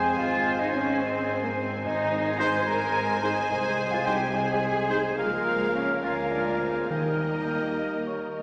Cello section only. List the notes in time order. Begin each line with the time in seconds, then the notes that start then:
0.18 F4
0.61 D#4
0.74 C#4
1.01 C4
1.44 A#3
1.57 C4
1.84 D#4
2.40 C5
2.68 A#4
3.23 G#4
3.93 F4
4.06 G4
4.34 G#4
5.18 G#3
5.74 C#4
6.03 F4
6.32 D4
6.61 C4
6.90 A#3